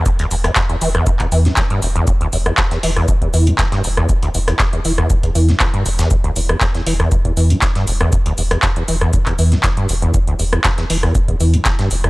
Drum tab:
HH |xxoxxxoxxxoxxxox|xxo-xxoxxxoxxxo-|xxoxxxoxxxoxxxo-|xxo-xxoxxxoxxxo-|
SH |x-x-x-x-x-x-x-x-|x-x-x---x-x-x-x-|x-x-x-x-x-x-x-xx|x-x-x---x-x-x-x-|
CP |----x----x--x---|----x-------x---|----x-------x---|----x-------x---|
SD |---ro--r---oo---|---roo-r----oo-r|---ro--r---oo--o|---roo-r----oo-r|
BD |o---o---oo--o---|o---o---oo--o---|o---o---oo--o---|o---o---oo--o---|

HH |xxoxxxoxxxoxxxox|xxoxxxoxxxoxxxox|
SH |x-x-x-x-x-x-x-x-|x-x-x---x-x-x-x-|
CP |----x----x--x---|----x-------x---|
SD |---ro--r---oo---|---roo-r----oo-r|
BD |o---o---oo--o---|o---o---oo--o---|